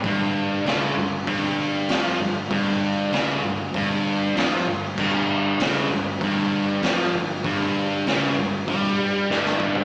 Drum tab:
CC |----------------|----------------|x---------------|----------------|
HH |o---o---o---o---|o---o---o---o---|----o---o---o---|o---o---o-------|
SD |----o-------o---|----o-------o---|----o-------o---|----o-------oo--|
FT |----------------|----------------|----------------|---------------o|
BD |o-------o-------|o-------o-------|o-------o-------|o-------o-----o-|